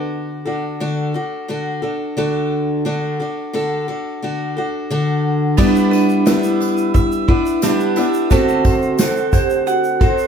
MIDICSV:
0, 0, Header, 1, 5, 480
1, 0, Start_track
1, 0, Key_signature, 1, "major"
1, 0, Tempo, 682594
1, 80, Time_signature, 4, 2, 24, 8
1, 7223, End_track
2, 0, Start_track
2, 0, Title_t, "Mandolin"
2, 0, Program_c, 0, 25
2, 3919, Note_on_c, 0, 59, 82
2, 4157, Note_on_c, 0, 71, 61
2, 4404, Note_on_c, 0, 76, 62
2, 4636, Note_off_c, 0, 71, 0
2, 4645, Note_on_c, 0, 71, 53
2, 4873, Note_off_c, 0, 76, 0
2, 4881, Note_on_c, 0, 76, 71
2, 5115, Note_off_c, 0, 71, 0
2, 5124, Note_on_c, 0, 71, 60
2, 5367, Note_on_c, 0, 62, 65
2, 5596, Note_off_c, 0, 76, 0
2, 5604, Note_on_c, 0, 76, 65
2, 5841, Note_off_c, 0, 59, 0
2, 5845, Note_on_c, 0, 57, 80
2, 5891, Note_off_c, 0, 71, 0
2, 5892, Note_off_c, 0, 76, 0
2, 6087, Note_on_c, 0, 72, 61
2, 6108, Note_off_c, 0, 62, 0
2, 6324, Note_on_c, 0, 78, 63
2, 6561, Note_off_c, 0, 72, 0
2, 6561, Note_on_c, 0, 72, 58
2, 6792, Note_off_c, 0, 78, 0
2, 6800, Note_on_c, 0, 78, 74
2, 7038, Note_off_c, 0, 72, 0
2, 7038, Note_on_c, 0, 72, 66
2, 7223, Note_off_c, 0, 57, 0
2, 7223, Note_off_c, 0, 72, 0
2, 7223, Note_off_c, 0, 78, 0
2, 7223, End_track
3, 0, Start_track
3, 0, Title_t, "Vibraphone"
3, 0, Program_c, 1, 11
3, 3930, Note_on_c, 1, 62, 81
3, 4412, Note_on_c, 1, 64, 68
3, 4422, Note_off_c, 1, 62, 0
3, 5365, Note_on_c, 1, 67, 74
3, 5397, Note_off_c, 1, 64, 0
3, 5838, Note_on_c, 1, 66, 92
3, 5858, Note_off_c, 1, 67, 0
3, 6319, Note_on_c, 1, 69, 81
3, 6335, Note_off_c, 1, 66, 0
3, 6561, Note_on_c, 1, 67, 77
3, 6568, Note_off_c, 1, 69, 0
3, 6799, Note_on_c, 1, 66, 92
3, 6809, Note_off_c, 1, 67, 0
3, 7031, Note_on_c, 1, 69, 88
3, 7047, Note_off_c, 1, 66, 0
3, 7223, Note_off_c, 1, 69, 0
3, 7223, End_track
4, 0, Start_track
4, 0, Title_t, "Steel-string acoustic guitar"
4, 0, Program_c, 2, 25
4, 0, Note_on_c, 2, 50, 44
4, 0, Note_on_c, 2, 62, 55
4, 0, Note_on_c, 2, 66, 56
4, 0, Note_on_c, 2, 69, 60
4, 312, Note_off_c, 2, 69, 0
4, 318, Note_off_c, 2, 66, 0
4, 320, Note_on_c, 2, 69, 42
4, 327, Note_on_c, 2, 66, 46
4, 329, Note_off_c, 2, 62, 0
4, 332, Note_on_c, 2, 62, 40
4, 560, Note_off_c, 2, 62, 0
4, 561, Note_off_c, 2, 66, 0
4, 561, Note_off_c, 2, 69, 0
4, 562, Note_off_c, 2, 50, 0
4, 565, Note_on_c, 2, 50, 58
4, 569, Note_on_c, 2, 62, 60
4, 570, Note_on_c, 2, 66, 69
4, 572, Note_on_c, 2, 69, 81
4, 794, Note_off_c, 2, 69, 0
4, 803, Note_off_c, 2, 66, 0
4, 803, Note_on_c, 2, 69, 45
4, 804, Note_off_c, 2, 50, 0
4, 806, Note_off_c, 2, 62, 0
4, 812, Note_on_c, 2, 66, 45
4, 814, Note_on_c, 2, 62, 42
4, 1039, Note_off_c, 2, 62, 0
4, 1043, Note_off_c, 2, 69, 0
4, 1044, Note_on_c, 2, 50, 53
4, 1045, Note_off_c, 2, 66, 0
4, 1047, Note_on_c, 2, 62, 55
4, 1054, Note_on_c, 2, 66, 64
4, 1058, Note_on_c, 2, 69, 59
4, 1272, Note_off_c, 2, 69, 0
4, 1277, Note_off_c, 2, 66, 0
4, 1280, Note_on_c, 2, 69, 44
4, 1283, Note_off_c, 2, 62, 0
4, 1284, Note_off_c, 2, 50, 0
4, 1285, Note_on_c, 2, 66, 36
4, 1292, Note_on_c, 2, 62, 35
4, 1520, Note_off_c, 2, 62, 0
4, 1522, Note_off_c, 2, 69, 0
4, 1524, Note_on_c, 2, 50, 70
4, 1525, Note_off_c, 2, 66, 0
4, 1529, Note_on_c, 2, 62, 74
4, 1533, Note_on_c, 2, 66, 78
4, 1535, Note_on_c, 2, 69, 81
4, 2001, Note_off_c, 2, 50, 0
4, 2001, Note_off_c, 2, 66, 0
4, 2004, Note_on_c, 2, 50, 73
4, 2005, Note_off_c, 2, 69, 0
4, 2007, Note_off_c, 2, 62, 0
4, 2009, Note_on_c, 2, 66, 72
4, 2010, Note_on_c, 2, 62, 63
4, 2013, Note_on_c, 2, 69, 69
4, 2239, Note_off_c, 2, 69, 0
4, 2244, Note_off_c, 2, 66, 0
4, 2245, Note_off_c, 2, 50, 0
4, 2247, Note_on_c, 2, 69, 39
4, 2248, Note_off_c, 2, 62, 0
4, 2253, Note_on_c, 2, 66, 40
4, 2263, Note_on_c, 2, 62, 39
4, 2480, Note_off_c, 2, 62, 0
4, 2483, Note_off_c, 2, 66, 0
4, 2485, Note_on_c, 2, 50, 67
4, 2487, Note_off_c, 2, 69, 0
4, 2489, Note_on_c, 2, 62, 66
4, 2491, Note_on_c, 2, 66, 63
4, 2494, Note_on_c, 2, 69, 77
4, 2720, Note_off_c, 2, 69, 0
4, 2726, Note_off_c, 2, 50, 0
4, 2727, Note_off_c, 2, 62, 0
4, 2727, Note_off_c, 2, 66, 0
4, 2728, Note_on_c, 2, 69, 50
4, 2736, Note_on_c, 2, 66, 47
4, 2742, Note_on_c, 2, 62, 38
4, 2966, Note_off_c, 2, 62, 0
4, 2967, Note_off_c, 2, 69, 0
4, 2971, Note_off_c, 2, 66, 0
4, 2971, Note_on_c, 2, 50, 52
4, 2975, Note_on_c, 2, 62, 53
4, 2981, Note_on_c, 2, 66, 57
4, 2983, Note_on_c, 2, 69, 54
4, 3203, Note_off_c, 2, 69, 0
4, 3209, Note_off_c, 2, 50, 0
4, 3210, Note_off_c, 2, 62, 0
4, 3211, Note_off_c, 2, 66, 0
4, 3211, Note_on_c, 2, 69, 41
4, 3220, Note_on_c, 2, 66, 46
4, 3224, Note_on_c, 2, 62, 38
4, 3446, Note_off_c, 2, 62, 0
4, 3447, Note_off_c, 2, 66, 0
4, 3449, Note_off_c, 2, 69, 0
4, 3449, Note_on_c, 2, 50, 77
4, 3454, Note_on_c, 2, 62, 73
4, 3456, Note_on_c, 2, 66, 81
4, 3458, Note_on_c, 2, 69, 71
4, 3920, Note_off_c, 2, 50, 0
4, 3923, Note_off_c, 2, 62, 0
4, 3923, Note_on_c, 2, 55, 84
4, 3926, Note_on_c, 2, 62, 78
4, 3927, Note_off_c, 2, 66, 0
4, 3928, Note_off_c, 2, 69, 0
4, 3930, Note_on_c, 2, 59, 86
4, 3931, Note_on_c, 2, 64, 78
4, 4391, Note_off_c, 2, 55, 0
4, 4399, Note_off_c, 2, 59, 0
4, 4400, Note_on_c, 2, 55, 60
4, 4402, Note_off_c, 2, 62, 0
4, 4405, Note_on_c, 2, 62, 59
4, 4408, Note_off_c, 2, 64, 0
4, 4408, Note_on_c, 2, 59, 65
4, 4417, Note_on_c, 2, 64, 67
4, 5110, Note_off_c, 2, 64, 0
4, 5114, Note_off_c, 2, 59, 0
4, 5118, Note_on_c, 2, 64, 52
4, 5122, Note_off_c, 2, 55, 0
4, 5123, Note_on_c, 2, 59, 50
4, 5128, Note_off_c, 2, 62, 0
4, 5130, Note_on_c, 2, 62, 47
4, 5358, Note_off_c, 2, 59, 0
4, 5359, Note_off_c, 2, 62, 0
4, 5361, Note_off_c, 2, 64, 0
4, 5361, Note_on_c, 2, 55, 69
4, 5366, Note_on_c, 2, 59, 72
4, 5367, Note_on_c, 2, 62, 74
4, 5371, Note_on_c, 2, 64, 69
4, 5591, Note_off_c, 2, 64, 0
4, 5600, Note_off_c, 2, 59, 0
4, 5600, Note_on_c, 2, 64, 57
4, 5603, Note_off_c, 2, 55, 0
4, 5604, Note_off_c, 2, 62, 0
4, 5608, Note_on_c, 2, 59, 50
4, 5612, Note_on_c, 2, 62, 46
4, 5842, Note_off_c, 2, 64, 0
4, 5845, Note_off_c, 2, 59, 0
4, 5846, Note_off_c, 2, 62, 0
4, 5847, Note_on_c, 2, 50, 75
4, 5848, Note_on_c, 2, 66, 73
4, 5849, Note_on_c, 2, 60, 77
4, 5853, Note_on_c, 2, 69, 87
4, 6315, Note_off_c, 2, 50, 0
4, 6318, Note_on_c, 2, 50, 67
4, 6321, Note_off_c, 2, 60, 0
4, 6324, Note_on_c, 2, 60, 55
4, 6325, Note_off_c, 2, 66, 0
4, 6325, Note_off_c, 2, 69, 0
4, 6333, Note_on_c, 2, 69, 60
4, 7032, Note_off_c, 2, 69, 0
4, 7041, Note_on_c, 2, 69, 54
4, 7048, Note_on_c, 2, 66, 49
4, 7052, Note_off_c, 2, 60, 0
4, 7055, Note_on_c, 2, 60, 47
4, 7076, Note_off_c, 2, 50, 0
4, 7223, Note_off_c, 2, 60, 0
4, 7223, Note_off_c, 2, 66, 0
4, 7223, Note_off_c, 2, 69, 0
4, 7223, End_track
5, 0, Start_track
5, 0, Title_t, "Drums"
5, 3924, Note_on_c, 9, 49, 89
5, 3926, Note_on_c, 9, 36, 102
5, 3933, Note_on_c, 9, 54, 45
5, 3994, Note_off_c, 9, 49, 0
5, 3996, Note_off_c, 9, 36, 0
5, 4003, Note_off_c, 9, 54, 0
5, 4049, Note_on_c, 9, 82, 49
5, 4120, Note_off_c, 9, 82, 0
5, 4171, Note_on_c, 9, 54, 46
5, 4242, Note_off_c, 9, 54, 0
5, 4284, Note_on_c, 9, 82, 44
5, 4355, Note_off_c, 9, 82, 0
5, 4403, Note_on_c, 9, 82, 71
5, 4408, Note_on_c, 9, 38, 104
5, 4408, Note_on_c, 9, 54, 84
5, 4473, Note_off_c, 9, 82, 0
5, 4478, Note_off_c, 9, 38, 0
5, 4478, Note_off_c, 9, 54, 0
5, 4524, Note_on_c, 9, 82, 60
5, 4594, Note_off_c, 9, 82, 0
5, 4652, Note_on_c, 9, 54, 51
5, 4722, Note_off_c, 9, 54, 0
5, 4763, Note_on_c, 9, 82, 50
5, 4834, Note_off_c, 9, 82, 0
5, 4885, Note_on_c, 9, 36, 89
5, 4886, Note_on_c, 9, 82, 67
5, 4955, Note_off_c, 9, 36, 0
5, 4956, Note_off_c, 9, 82, 0
5, 5006, Note_on_c, 9, 82, 50
5, 5076, Note_off_c, 9, 82, 0
5, 5123, Note_on_c, 9, 36, 99
5, 5193, Note_off_c, 9, 36, 0
5, 5245, Note_on_c, 9, 82, 49
5, 5316, Note_off_c, 9, 82, 0
5, 5359, Note_on_c, 9, 54, 90
5, 5363, Note_on_c, 9, 82, 82
5, 5367, Note_on_c, 9, 38, 96
5, 5430, Note_off_c, 9, 54, 0
5, 5433, Note_off_c, 9, 82, 0
5, 5437, Note_off_c, 9, 38, 0
5, 5484, Note_on_c, 9, 82, 48
5, 5555, Note_off_c, 9, 82, 0
5, 5598, Note_on_c, 9, 54, 52
5, 5668, Note_off_c, 9, 54, 0
5, 5722, Note_on_c, 9, 82, 58
5, 5792, Note_off_c, 9, 82, 0
5, 5841, Note_on_c, 9, 54, 47
5, 5842, Note_on_c, 9, 82, 64
5, 5843, Note_on_c, 9, 36, 107
5, 5912, Note_off_c, 9, 54, 0
5, 5913, Note_off_c, 9, 36, 0
5, 5913, Note_off_c, 9, 82, 0
5, 5966, Note_on_c, 9, 82, 55
5, 6036, Note_off_c, 9, 82, 0
5, 6080, Note_on_c, 9, 54, 49
5, 6082, Note_on_c, 9, 36, 102
5, 6150, Note_off_c, 9, 54, 0
5, 6153, Note_off_c, 9, 36, 0
5, 6203, Note_on_c, 9, 82, 40
5, 6274, Note_off_c, 9, 82, 0
5, 6318, Note_on_c, 9, 82, 80
5, 6319, Note_on_c, 9, 54, 91
5, 6324, Note_on_c, 9, 38, 108
5, 6389, Note_off_c, 9, 54, 0
5, 6389, Note_off_c, 9, 82, 0
5, 6394, Note_off_c, 9, 38, 0
5, 6443, Note_on_c, 9, 82, 62
5, 6513, Note_off_c, 9, 82, 0
5, 6556, Note_on_c, 9, 38, 35
5, 6558, Note_on_c, 9, 82, 51
5, 6560, Note_on_c, 9, 36, 91
5, 6566, Note_on_c, 9, 54, 51
5, 6626, Note_off_c, 9, 38, 0
5, 6628, Note_off_c, 9, 82, 0
5, 6630, Note_off_c, 9, 36, 0
5, 6636, Note_off_c, 9, 54, 0
5, 6680, Note_on_c, 9, 82, 49
5, 6751, Note_off_c, 9, 82, 0
5, 6801, Note_on_c, 9, 82, 63
5, 6871, Note_off_c, 9, 82, 0
5, 6919, Note_on_c, 9, 82, 52
5, 6990, Note_off_c, 9, 82, 0
5, 7038, Note_on_c, 9, 36, 103
5, 7039, Note_on_c, 9, 54, 26
5, 7109, Note_off_c, 9, 36, 0
5, 7109, Note_off_c, 9, 54, 0
5, 7161, Note_on_c, 9, 82, 44
5, 7223, Note_off_c, 9, 82, 0
5, 7223, End_track
0, 0, End_of_file